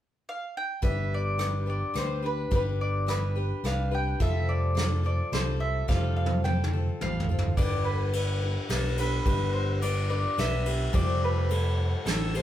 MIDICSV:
0, 0, Header, 1, 5, 480
1, 0, Start_track
1, 0, Tempo, 561272
1, 712, Time_signature, 3, 2, 24, 8
1, 10622, End_track
2, 0, Start_track
2, 0, Title_t, "Mandolin"
2, 0, Program_c, 0, 25
2, 247, Note_on_c, 0, 77, 88
2, 486, Note_off_c, 0, 77, 0
2, 489, Note_on_c, 0, 79, 88
2, 718, Note_off_c, 0, 79, 0
2, 722, Note_on_c, 0, 76, 74
2, 964, Note_off_c, 0, 76, 0
2, 977, Note_on_c, 0, 74, 71
2, 1440, Note_off_c, 0, 74, 0
2, 1450, Note_on_c, 0, 74, 68
2, 1666, Note_off_c, 0, 74, 0
2, 1694, Note_on_c, 0, 72, 79
2, 1929, Note_off_c, 0, 72, 0
2, 1932, Note_on_c, 0, 71, 74
2, 2147, Note_off_c, 0, 71, 0
2, 2180, Note_on_c, 0, 71, 74
2, 2241, Note_off_c, 0, 71, 0
2, 2404, Note_on_c, 0, 74, 73
2, 2638, Note_off_c, 0, 74, 0
2, 2641, Note_on_c, 0, 71, 63
2, 3132, Note_on_c, 0, 77, 77
2, 3133, Note_off_c, 0, 71, 0
2, 3371, Note_off_c, 0, 77, 0
2, 3375, Note_on_c, 0, 79, 77
2, 3605, Note_off_c, 0, 79, 0
2, 3608, Note_on_c, 0, 76, 78
2, 3838, Note_on_c, 0, 74, 70
2, 3850, Note_off_c, 0, 76, 0
2, 4315, Note_off_c, 0, 74, 0
2, 4325, Note_on_c, 0, 74, 69
2, 4555, Note_off_c, 0, 74, 0
2, 4558, Note_on_c, 0, 72, 75
2, 4791, Note_on_c, 0, 76, 70
2, 4805, Note_off_c, 0, 72, 0
2, 5030, Note_off_c, 0, 76, 0
2, 5034, Note_on_c, 0, 77, 78
2, 5259, Note_off_c, 0, 77, 0
2, 5272, Note_on_c, 0, 77, 70
2, 5505, Note_off_c, 0, 77, 0
2, 5509, Note_on_c, 0, 79, 61
2, 6006, Note_on_c, 0, 77, 98
2, 6200, Note_off_c, 0, 79, 0
2, 6471, Note_off_c, 0, 77, 0
2, 6474, Note_on_c, 0, 74, 84
2, 6705, Note_off_c, 0, 74, 0
2, 6709, Note_on_c, 0, 71, 59
2, 7160, Note_off_c, 0, 71, 0
2, 7450, Note_on_c, 0, 69, 71
2, 7688, Note_off_c, 0, 69, 0
2, 7692, Note_on_c, 0, 71, 84
2, 8149, Note_off_c, 0, 71, 0
2, 8152, Note_on_c, 0, 72, 61
2, 8394, Note_off_c, 0, 72, 0
2, 8398, Note_on_c, 0, 74, 75
2, 8620, Note_off_c, 0, 74, 0
2, 8639, Note_on_c, 0, 74, 71
2, 8885, Note_off_c, 0, 74, 0
2, 8891, Note_on_c, 0, 76, 80
2, 9358, Note_off_c, 0, 76, 0
2, 9362, Note_on_c, 0, 74, 81
2, 9582, Note_off_c, 0, 74, 0
2, 9614, Note_on_c, 0, 71, 73
2, 10311, Note_off_c, 0, 71, 0
2, 10315, Note_on_c, 0, 69, 81
2, 10561, Note_off_c, 0, 69, 0
2, 10569, Note_on_c, 0, 72, 82
2, 10622, Note_off_c, 0, 72, 0
2, 10622, End_track
3, 0, Start_track
3, 0, Title_t, "Steel-string acoustic guitar"
3, 0, Program_c, 1, 25
3, 701, Note_on_c, 1, 55, 69
3, 706, Note_on_c, 1, 62, 62
3, 710, Note_on_c, 1, 67, 72
3, 712, Note_on_c, 1, 71, 74
3, 1176, Note_off_c, 1, 62, 0
3, 1178, Note_off_c, 1, 55, 0
3, 1181, Note_on_c, 1, 55, 49
3, 1186, Note_on_c, 1, 62, 51
3, 1188, Note_off_c, 1, 71, 0
3, 1192, Note_off_c, 1, 67, 0
3, 1195, Note_on_c, 1, 67, 52
3, 1198, Note_on_c, 1, 71, 57
3, 1409, Note_off_c, 1, 71, 0
3, 1418, Note_off_c, 1, 67, 0
3, 1420, Note_on_c, 1, 71, 35
3, 1426, Note_off_c, 1, 62, 0
3, 1427, Note_off_c, 1, 55, 0
3, 1428, Note_on_c, 1, 67, 35
3, 1436, Note_on_c, 1, 62, 29
3, 1654, Note_off_c, 1, 62, 0
3, 1657, Note_off_c, 1, 67, 0
3, 1657, Note_on_c, 1, 55, 53
3, 1661, Note_off_c, 1, 71, 0
3, 1664, Note_on_c, 1, 62, 54
3, 1667, Note_on_c, 1, 67, 54
3, 1671, Note_on_c, 1, 71, 60
3, 1892, Note_off_c, 1, 71, 0
3, 1899, Note_off_c, 1, 67, 0
3, 1902, Note_on_c, 1, 71, 41
3, 1903, Note_off_c, 1, 62, 0
3, 1906, Note_off_c, 1, 55, 0
3, 1910, Note_on_c, 1, 67, 36
3, 1913, Note_on_c, 1, 62, 37
3, 2139, Note_off_c, 1, 62, 0
3, 2144, Note_off_c, 1, 67, 0
3, 2144, Note_on_c, 1, 55, 64
3, 2148, Note_off_c, 1, 71, 0
3, 2149, Note_on_c, 1, 62, 75
3, 2154, Note_on_c, 1, 67, 77
3, 2159, Note_on_c, 1, 71, 77
3, 2618, Note_off_c, 1, 55, 0
3, 2621, Note_off_c, 1, 62, 0
3, 2622, Note_on_c, 1, 55, 46
3, 2631, Note_off_c, 1, 67, 0
3, 2631, Note_off_c, 1, 71, 0
3, 2631, Note_on_c, 1, 62, 51
3, 2634, Note_on_c, 1, 67, 52
3, 2641, Note_on_c, 1, 71, 51
3, 2859, Note_off_c, 1, 71, 0
3, 2866, Note_off_c, 1, 67, 0
3, 2869, Note_off_c, 1, 55, 0
3, 2869, Note_on_c, 1, 71, 41
3, 2873, Note_off_c, 1, 62, 0
3, 2877, Note_on_c, 1, 67, 37
3, 2884, Note_on_c, 1, 62, 28
3, 3111, Note_off_c, 1, 62, 0
3, 3112, Note_on_c, 1, 55, 54
3, 3113, Note_off_c, 1, 71, 0
3, 3116, Note_off_c, 1, 67, 0
3, 3122, Note_on_c, 1, 62, 59
3, 3125, Note_on_c, 1, 67, 49
3, 3131, Note_on_c, 1, 71, 51
3, 3336, Note_off_c, 1, 71, 0
3, 3342, Note_off_c, 1, 67, 0
3, 3346, Note_on_c, 1, 71, 45
3, 3352, Note_off_c, 1, 62, 0
3, 3353, Note_on_c, 1, 67, 38
3, 3354, Note_off_c, 1, 55, 0
3, 3363, Note_on_c, 1, 62, 35
3, 3591, Note_on_c, 1, 53, 70
3, 3592, Note_off_c, 1, 71, 0
3, 3593, Note_off_c, 1, 62, 0
3, 3593, Note_on_c, 1, 55, 75
3, 3595, Note_off_c, 1, 67, 0
3, 3596, Note_on_c, 1, 60, 70
3, 3598, Note_on_c, 1, 69, 71
3, 3599, Note_on_c, 1, 65, 78
3, 4057, Note_off_c, 1, 55, 0
3, 4060, Note_off_c, 1, 60, 0
3, 4060, Note_on_c, 1, 55, 50
3, 4064, Note_off_c, 1, 65, 0
3, 4069, Note_off_c, 1, 69, 0
3, 4070, Note_on_c, 1, 60, 45
3, 4074, Note_on_c, 1, 65, 54
3, 4075, Note_off_c, 1, 53, 0
3, 4079, Note_on_c, 1, 69, 57
3, 4293, Note_off_c, 1, 69, 0
3, 4303, Note_off_c, 1, 65, 0
3, 4303, Note_on_c, 1, 69, 36
3, 4306, Note_off_c, 1, 60, 0
3, 4309, Note_off_c, 1, 55, 0
3, 4314, Note_on_c, 1, 65, 35
3, 4317, Note_on_c, 1, 60, 32
3, 4546, Note_off_c, 1, 60, 0
3, 4551, Note_off_c, 1, 69, 0
3, 4553, Note_on_c, 1, 55, 54
3, 4556, Note_off_c, 1, 65, 0
3, 4557, Note_on_c, 1, 60, 53
3, 4565, Note_on_c, 1, 65, 55
3, 4571, Note_on_c, 1, 69, 67
3, 5024, Note_off_c, 1, 60, 0
3, 5027, Note_off_c, 1, 55, 0
3, 5028, Note_off_c, 1, 65, 0
3, 5028, Note_on_c, 1, 53, 69
3, 5030, Note_on_c, 1, 55, 73
3, 5031, Note_off_c, 1, 69, 0
3, 5034, Note_on_c, 1, 60, 78
3, 5038, Note_on_c, 1, 65, 82
3, 5041, Note_on_c, 1, 69, 82
3, 5498, Note_off_c, 1, 55, 0
3, 5502, Note_off_c, 1, 60, 0
3, 5509, Note_on_c, 1, 55, 50
3, 5510, Note_off_c, 1, 65, 0
3, 5512, Note_on_c, 1, 60, 51
3, 5513, Note_off_c, 1, 53, 0
3, 5515, Note_off_c, 1, 69, 0
3, 5520, Note_on_c, 1, 65, 58
3, 5525, Note_on_c, 1, 69, 53
3, 5747, Note_off_c, 1, 69, 0
3, 5754, Note_off_c, 1, 55, 0
3, 5755, Note_off_c, 1, 60, 0
3, 5758, Note_on_c, 1, 69, 40
3, 5759, Note_off_c, 1, 65, 0
3, 5769, Note_on_c, 1, 65, 31
3, 5774, Note_on_c, 1, 60, 30
3, 5993, Note_off_c, 1, 60, 0
3, 5998, Note_off_c, 1, 69, 0
3, 5998, Note_on_c, 1, 55, 56
3, 6002, Note_off_c, 1, 65, 0
3, 6003, Note_on_c, 1, 60, 58
3, 6013, Note_on_c, 1, 65, 57
3, 6017, Note_on_c, 1, 69, 63
3, 6224, Note_off_c, 1, 69, 0
3, 6233, Note_off_c, 1, 65, 0
3, 6235, Note_on_c, 1, 69, 49
3, 6238, Note_off_c, 1, 55, 0
3, 6241, Note_off_c, 1, 60, 0
3, 6243, Note_on_c, 1, 65, 48
3, 6255, Note_on_c, 1, 60, 41
3, 6477, Note_off_c, 1, 69, 0
3, 6478, Note_off_c, 1, 60, 0
3, 6479, Note_on_c, 1, 55, 67
3, 6481, Note_off_c, 1, 65, 0
3, 6482, Note_on_c, 1, 62, 71
3, 6485, Note_on_c, 1, 67, 78
3, 6488, Note_on_c, 1, 71, 82
3, 6950, Note_off_c, 1, 55, 0
3, 6950, Note_off_c, 1, 62, 0
3, 6953, Note_on_c, 1, 55, 45
3, 6960, Note_on_c, 1, 62, 54
3, 6963, Note_off_c, 1, 71, 0
3, 6964, Note_off_c, 1, 67, 0
3, 6967, Note_on_c, 1, 67, 51
3, 6973, Note_on_c, 1, 71, 54
3, 7183, Note_off_c, 1, 71, 0
3, 7193, Note_on_c, 1, 71, 42
3, 7196, Note_off_c, 1, 55, 0
3, 7196, Note_off_c, 1, 67, 0
3, 7199, Note_off_c, 1, 62, 0
3, 7206, Note_on_c, 1, 67, 34
3, 7214, Note_on_c, 1, 62, 32
3, 7424, Note_off_c, 1, 62, 0
3, 7431, Note_on_c, 1, 55, 57
3, 7432, Note_off_c, 1, 67, 0
3, 7435, Note_on_c, 1, 62, 52
3, 7436, Note_off_c, 1, 71, 0
3, 7442, Note_on_c, 1, 67, 66
3, 7446, Note_on_c, 1, 71, 58
3, 7669, Note_off_c, 1, 71, 0
3, 7674, Note_off_c, 1, 55, 0
3, 7676, Note_off_c, 1, 62, 0
3, 7677, Note_off_c, 1, 67, 0
3, 7680, Note_on_c, 1, 71, 45
3, 7687, Note_on_c, 1, 67, 41
3, 7694, Note_on_c, 1, 62, 34
3, 7912, Note_off_c, 1, 67, 0
3, 7913, Note_off_c, 1, 62, 0
3, 7914, Note_on_c, 1, 55, 67
3, 7916, Note_off_c, 1, 71, 0
3, 7923, Note_on_c, 1, 62, 77
3, 7923, Note_on_c, 1, 67, 72
3, 7927, Note_on_c, 1, 71, 80
3, 8389, Note_off_c, 1, 55, 0
3, 8392, Note_on_c, 1, 55, 49
3, 8394, Note_off_c, 1, 62, 0
3, 8402, Note_off_c, 1, 71, 0
3, 8404, Note_on_c, 1, 62, 51
3, 8405, Note_off_c, 1, 67, 0
3, 8409, Note_on_c, 1, 67, 56
3, 8412, Note_on_c, 1, 71, 56
3, 8624, Note_off_c, 1, 71, 0
3, 8631, Note_off_c, 1, 67, 0
3, 8634, Note_off_c, 1, 55, 0
3, 8634, Note_on_c, 1, 71, 44
3, 8640, Note_off_c, 1, 62, 0
3, 8642, Note_on_c, 1, 67, 37
3, 8651, Note_on_c, 1, 62, 32
3, 8874, Note_off_c, 1, 62, 0
3, 8874, Note_on_c, 1, 55, 56
3, 8875, Note_off_c, 1, 71, 0
3, 8876, Note_off_c, 1, 67, 0
3, 8884, Note_on_c, 1, 62, 61
3, 8886, Note_on_c, 1, 67, 58
3, 8893, Note_on_c, 1, 71, 66
3, 9103, Note_off_c, 1, 71, 0
3, 9113, Note_on_c, 1, 71, 46
3, 9115, Note_off_c, 1, 55, 0
3, 9116, Note_off_c, 1, 67, 0
3, 9120, Note_off_c, 1, 62, 0
3, 9126, Note_on_c, 1, 67, 47
3, 9131, Note_on_c, 1, 62, 35
3, 9346, Note_off_c, 1, 67, 0
3, 9346, Note_on_c, 1, 53, 69
3, 9347, Note_off_c, 1, 62, 0
3, 9348, Note_on_c, 1, 55, 78
3, 9351, Note_on_c, 1, 60, 75
3, 9353, Note_off_c, 1, 71, 0
3, 9356, Note_on_c, 1, 67, 76
3, 9356, Note_on_c, 1, 69, 92
3, 9823, Note_off_c, 1, 55, 0
3, 9826, Note_on_c, 1, 55, 57
3, 9829, Note_off_c, 1, 60, 0
3, 9830, Note_off_c, 1, 53, 0
3, 9831, Note_off_c, 1, 69, 0
3, 9833, Note_on_c, 1, 60, 51
3, 9835, Note_off_c, 1, 67, 0
3, 9839, Note_on_c, 1, 67, 51
3, 9842, Note_on_c, 1, 69, 59
3, 10304, Note_off_c, 1, 55, 0
3, 10307, Note_on_c, 1, 55, 54
3, 10315, Note_off_c, 1, 60, 0
3, 10315, Note_off_c, 1, 69, 0
3, 10318, Note_on_c, 1, 60, 61
3, 10320, Note_off_c, 1, 67, 0
3, 10324, Note_on_c, 1, 67, 57
3, 10326, Note_on_c, 1, 69, 60
3, 10542, Note_off_c, 1, 69, 0
3, 10550, Note_off_c, 1, 55, 0
3, 10552, Note_off_c, 1, 67, 0
3, 10552, Note_on_c, 1, 69, 46
3, 10555, Note_off_c, 1, 60, 0
3, 10562, Note_on_c, 1, 67, 41
3, 10570, Note_on_c, 1, 60, 38
3, 10622, Note_off_c, 1, 60, 0
3, 10622, Note_off_c, 1, 67, 0
3, 10622, Note_off_c, 1, 69, 0
3, 10622, End_track
4, 0, Start_track
4, 0, Title_t, "Fingered electric bass"
4, 0, Program_c, 2, 33
4, 708, Note_on_c, 2, 31, 75
4, 1555, Note_off_c, 2, 31, 0
4, 1672, Note_on_c, 2, 38, 74
4, 2095, Note_off_c, 2, 38, 0
4, 2153, Note_on_c, 2, 31, 77
4, 2999, Note_off_c, 2, 31, 0
4, 3109, Note_on_c, 2, 36, 80
4, 3535, Note_off_c, 2, 36, 0
4, 3595, Note_on_c, 2, 29, 81
4, 4441, Note_off_c, 2, 29, 0
4, 4552, Note_on_c, 2, 36, 76
4, 4977, Note_off_c, 2, 36, 0
4, 5034, Note_on_c, 2, 29, 80
4, 5881, Note_off_c, 2, 29, 0
4, 5994, Note_on_c, 2, 33, 69
4, 6212, Note_off_c, 2, 33, 0
4, 6240, Note_on_c, 2, 31, 79
4, 6455, Note_off_c, 2, 31, 0
4, 6478, Note_on_c, 2, 31, 80
4, 7322, Note_off_c, 2, 31, 0
4, 7436, Note_on_c, 2, 35, 85
4, 7859, Note_off_c, 2, 35, 0
4, 7916, Note_on_c, 2, 31, 87
4, 8760, Note_off_c, 2, 31, 0
4, 8878, Note_on_c, 2, 35, 89
4, 9299, Note_off_c, 2, 35, 0
4, 9357, Note_on_c, 2, 29, 86
4, 10199, Note_off_c, 2, 29, 0
4, 10311, Note_on_c, 2, 33, 84
4, 10622, Note_off_c, 2, 33, 0
4, 10622, End_track
5, 0, Start_track
5, 0, Title_t, "Drums"
5, 706, Note_on_c, 9, 42, 48
5, 708, Note_on_c, 9, 36, 81
5, 791, Note_off_c, 9, 42, 0
5, 794, Note_off_c, 9, 36, 0
5, 1186, Note_on_c, 9, 42, 55
5, 1193, Note_on_c, 9, 37, 79
5, 1272, Note_off_c, 9, 42, 0
5, 1279, Note_off_c, 9, 37, 0
5, 1670, Note_on_c, 9, 42, 53
5, 1677, Note_on_c, 9, 37, 65
5, 1756, Note_off_c, 9, 42, 0
5, 1763, Note_off_c, 9, 37, 0
5, 2150, Note_on_c, 9, 42, 50
5, 2153, Note_on_c, 9, 36, 81
5, 2236, Note_off_c, 9, 42, 0
5, 2238, Note_off_c, 9, 36, 0
5, 2634, Note_on_c, 9, 42, 62
5, 2641, Note_on_c, 9, 37, 82
5, 2720, Note_off_c, 9, 42, 0
5, 2727, Note_off_c, 9, 37, 0
5, 3117, Note_on_c, 9, 42, 49
5, 3124, Note_on_c, 9, 37, 68
5, 3202, Note_off_c, 9, 42, 0
5, 3209, Note_off_c, 9, 37, 0
5, 3592, Note_on_c, 9, 42, 47
5, 3594, Note_on_c, 9, 36, 80
5, 3677, Note_off_c, 9, 42, 0
5, 3679, Note_off_c, 9, 36, 0
5, 4077, Note_on_c, 9, 42, 57
5, 4083, Note_on_c, 9, 38, 72
5, 4162, Note_off_c, 9, 42, 0
5, 4169, Note_off_c, 9, 38, 0
5, 4555, Note_on_c, 9, 42, 50
5, 4562, Note_on_c, 9, 38, 67
5, 4641, Note_off_c, 9, 42, 0
5, 4648, Note_off_c, 9, 38, 0
5, 5035, Note_on_c, 9, 36, 85
5, 5043, Note_on_c, 9, 38, 43
5, 5121, Note_off_c, 9, 36, 0
5, 5129, Note_off_c, 9, 38, 0
5, 5354, Note_on_c, 9, 48, 51
5, 5440, Note_off_c, 9, 48, 0
5, 5516, Note_on_c, 9, 48, 52
5, 5602, Note_off_c, 9, 48, 0
5, 5676, Note_on_c, 9, 47, 67
5, 5762, Note_off_c, 9, 47, 0
5, 5996, Note_on_c, 9, 45, 64
5, 6082, Note_off_c, 9, 45, 0
5, 6157, Note_on_c, 9, 43, 55
5, 6243, Note_off_c, 9, 43, 0
5, 6317, Note_on_c, 9, 43, 70
5, 6402, Note_off_c, 9, 43, 0
5, 6477, Note_on_c, 9, 36, 83
5, 6477, Note_on_c, 9, 51, 52
5, 6562, Note_off_c, 9, 36, 0
5, 6562, Note_off_c, 9, 51, 0
5, 6956, Note_on_c, 9, 51, 57
5, 7041, Note_off_c, 9, 51, 0
5, 7436, Note_on_c, 9, 51, 58
5, 7443, Note_on_c, 9, 38, 81
5, 7522, Note_off_c, 9, 51, 0
5, 7529, Note_off_c, 9, 38, 0
5, 7676, Note_on_c, 9, 51, 51
5, 7761, Note_off_c, 9, 51, 0
5, 7916, Note_on_c, 9, 51, 49
5, 7917, Note_on_c, 9, 36, 91
5, 8002, Note_off_c, 9, 51, 0
5, 8003, Note_off_c, 9, 36, 0
5, 8400, Note_on_c, 9, 51, 61
5, 8486, Note_off_c, 9, 51, 0
5, 8879, Note_on_c, 9, 51, 54
5, 8886, Note_on_c, 9, 38, 77
5, 8965, Note_off_c, 9, 51, 0
5, 8971, Note_off_c, 9, 38, 0
5, 9114, Note_on_c, 9, 51, 52
5, 9200, Note_off_c, 9, 51, 0
5, 9356, Note_on_c, 9, 36, 94
5, 9357, Note_on_c, 9, 51, 50
5, 9441, Note_off_c, 9, 36, 0
5, 9442, Note_off_c, 9, 51, 0
5, 9839, Note_on_c, 9, 51, 64
5, 9925, Note_off_c, 9, 51, 0
5, 10316, Note_on_c, 9, 51, 54
5, 10323, Note_on_c, 9, 38, 83
5, 10402, Note_off_c, 9, 51, 0
5, 10408, Note_off_c, 9, 38, 0
5, 10557, Note_on_c, 9, 51, 49
5, 10622, Note_off_c, 9, 51, 0
5, 10622, End_track
0, 0, End_of_file